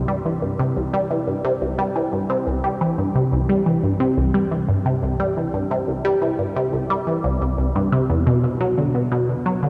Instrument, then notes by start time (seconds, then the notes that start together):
synth arpeggio sound
0.08 G3
0.25 E3
0.42 G2
0.59 C3
0.77 C2
0.94 G3
1.11 E3
1.28 G2
1.45 C3
1.62 C2
1.79 G3
1.96 E3
2.13 G2
2.30 C3
2.47 C2
2.64 G3
2.81 E3
2.98 G2
3.15 C3
3.32 C2
3.49 G3
3.66 E3
3.83 G2
4.00 C3
4.17 C2
4.34 G3
4.51 E3
4.69 G2
4.86 C3
5.03 C2
5.20 G3
5.37 E3
5.54 G2
5.71 C3
5.88 C2
6.05 G3
6.22 E3
6.39 G2
6.56 C3
6.73 C2
6.90 G3
7.07 E3
7.24 C2
7.41 C2
7.58 C2
7.75 G2
7.92 C3
8.09 E2
8.27 B2
8.44 B2
8.61 F#3
8.78 D3
8.95 B2
9.12 B2
9.29 B2
9.46 F#3
9.63 D3